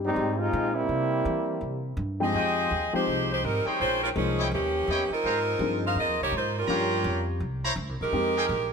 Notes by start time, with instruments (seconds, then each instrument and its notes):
Already playing: upright bass G2, grand piano G3 A#3 C4 D#4 G4
0.04 trombone section G3 G#3 C4 D#4
0.16 upright bass G#2
0.39 trombone section G#3 C4 D#4 F4
0.53 upright bass A#2
0.74 trombone section G3 A#3 C4 E4
0.89 upright bass C3
1.25 upright bass E3
1.61 upright bass C3
1.97 upright bass G2
2.20 grand piano F3 G#3 C4 D#4 G5, saxophone section C4 G4 G#4 D#5
2.33 upright bass F2, trumpet section F4 D#5 G5
2.71 upright bass D#2
2.93 grand piano F3 G#3 C4 D#4 G4, saxophone section G#3 D#4 G4 C5, muted upright bass stroke
3.07 upright bass C2
3.32 saxophone section G#3 D#4 G4 C5
3.44 upright bass G#1, saxophone section G3 C4 D#4 A#4
3.65 saxophone section D#3 G3 C4 G#4, trumpet section D#4 C5 C#5 G5, muted upright bass stroke
3.80 upright bass A#1, saxophone section G#3 C#4 F4 C5
4.03 saxophone section G#3 C#4 F4 A#4
4.15 upright bass C2, grand piano F3 G#3 A#3 D#4 C5, saxophone section F3 C4 C#4 G#4
4.38 trumpet section E4 C#5 D#5 G5
4.52 upright bass D#2, saxophone section E3 A#3 C#4 G4
4.88 upright bass E2, trumpet section E4 C#5 D#5 G5
5.10 saxophone section F3 C4 D#4 A#4, muted upright bass stroke
5.24 upright bass G#2, trumpet section G#4 C5 F5 A#5
5.59 upright bass G2, grand piano F3 A#3 C4 D#4 G#4
5.86 saxophone section D#4 A#4 C5 F5
5.95 upright bass F2, saxophone section C4 F4 A#4 D#5
6.08 upright bass D#2
6.21 upright bass C2, saxophone section A#3 D#4 G4 C#5
6.32 upright bass G#2
6.36 saxophone section A#3 D#4 F4 C5
6.59 saxophone section G3 C#4 F4 A#4
6.67 upright bass G2, grand piano F3 G3 A#3 C#4 F4, trumpet section G4 C#5 F5 A#5
7.04 upright bass F2
7.40 upright bass C2
7.63 trumpet section E4 C5 C#5 A#5
7.76 upright bass C#2
7.89 upright bass C2
8.01 upright bass A#1, saxophone section G#3 D#4 G4 A#4
8.12 upright bass F2, grand piano G#3 A#3 C4 D#4 G4
8.35 trumpet section D#4 G#4 A#4 G5
8.49 upright bass A#1